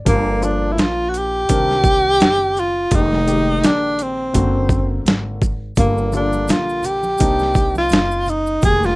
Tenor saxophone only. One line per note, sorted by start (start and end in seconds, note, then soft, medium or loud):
0.08 0.45 A#3 medium
0.44 0.74 D4 medium
0.72 0.81 E4 medium
0.79 1.10 F4 loud
1.09 1.19 F#4 medium
1.18 2.61 G4 loud
2.60 2.96 F4 medium
2.95 3.68 D#4 loud
3.66 4.04 D4 medium
4.03 5.08 C4 medium
5.79 6.11 A#3 medium
6.16 6.52 D4 medium
6.51 6.87 F4 medium
6.86 7.77 G4 loud
7.78 8.31 F4 medium
8.29 8.64 D#4 medium
8.65 8.87 G#4 loud
8.85 8.96 F4 medium